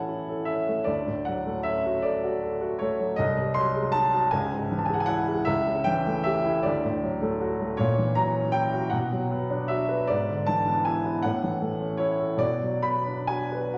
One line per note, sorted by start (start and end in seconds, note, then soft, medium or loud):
0.00 0.84 A2 medium
0.00 0.91 E3 soft
0.00 0.68 A3 soft
0.00 0.48 C#4 soft
0.00 0.08 E4 medium
0.00 0.29 A4 medium
0.00 0.91 C#5 medium
0.00 0.47 F#5 medium
0.00 0.91 G#5 medium
0.00 0.91 A5 medium
0.08 0.40 E4 soft
0.29 0.61 A4 soft
0.45 0.80 C#4 soft
0.45 0.87 E5 medium
0.68 0.88 A3 soft
0.84 3.13 D2 medium
0.84 1.26 D5 medium
1.07 1.39 A2 soft
1.25 1.58 F#3 soft
1.25 1.65 F#5 medium
1.46 1.77 A3 medium
1.63 1.96 C#4 medium
1.63 2.03 E5 medium
1.85 2.16 F#4 medium
2.02 2.35 A4 medium
2.02 2.80 D5 medium
2.24 2.54 F#4 medium
2.43 2.73 A4 medium
2.61 2.92 F#4 medium
2.79 3.11 A3 medium
2.79 3.17 C#5 medium
2.99 3.18 F#3 medium
3.16 4.30 C2 medium
3.16 3.55 D#5 loud
3.37 3.67 C3 medium
3.54 3.87 F#3 medium
3.54 3.93 C6 loud
3.75 4.06 G#3 medium
3.92 4.25 D#4 medium
3.92 4.32 A5 loud
4.14 4.33 F#4 medium
4.31 5.45 C#2 medium
4.31 4.77 G#5 medium
4.52 4.83 G#2 medium
4.71 5.02 E3 medium
4.78 4.86 A5 medium
4.86 5.21 G#3 medium
4.86 4.94 G#5 medium
4.94 5.02 F#5 medium
5.00 5.09 G#5 medium
5.06 5.40 E4 medium
5.06 5.47 F#5 loud
5.28 5.48 G#3 medium
5.45 6.61 C#2 medium
5.45 5.86 E5 loud
5.67 5.99 C#3 medium
5.84 6.18 E3 medium
5.84 6.25 G5 loud
6.06 6.38 A3 medium
6.24 6.57 G4 medium
6.24 6.64 E5 loud
6.45 6.65 E4 medium
6.63 7.76 D2 medium
6.63 7.41 D5 loud
6.84 7.15 A2 medium
7.03 7.34 F#3 medium
7.21 7.53 A3 medium
7.41 7.72 F#4 medium
7.60 7.79 A3 medium
7.77 8.89 A#2 medium
7.77 8.16 C#5 loud
7.98 8.28 E3 medium
8.15 8.47 F#3 medium
8.15 8.54 A#5 loud
8.34 8.65 C#4 medium
8.52 8.85 E4 medium
8.52 8.91 G5 loud
8.73 8.92 F#4 medium
8.90 10.05 B2 medium
8.90 9.68 F#5 medium
9.12 9.42 F#3 medium
9.31 9.62 B3 medium
9.50 9.81 D4 medium
9.68 10.01 F#4 medium
9.68 10.08 E5 medium
9.88 10.08 B4 medium
10.07 11.21 G#2 medium
10.07 10.47 D5 loud
10.29 10.60 D3 medium
10.46 10.79 E3 medium
10.46 10.85 A5 loud
10.68 10.98 B3 medium
10.85 11.17 E4 medium
10.85 11.23 G#5 medium
11.05 11.24 B3 medium
11.22 12.38 A2 medium
11.22 12.00 F#5 loud
11.43 11.74 E3 soft
11.61 11.92 A3 soft
11.81 12.12 C#4 medium
11.97 12.32 E4 medium
11.97 12.40 C#5 medium
12.20 12.41 A4 medium
12.37 13.78 B2 medium
12.37 12.83 D5 loud
12.62 12.97 F#3 soft
12.82 13.20 B3 soft
12.82 13.28 B5 medium
13.06 13.42 D4 soft
13.27 13.65 F#4 medium
13.27 13.72 G#5 medium
13.52 13.78 B4 medium
13.74 13.78 F#4 soft
13.74 13.78 F#5 medium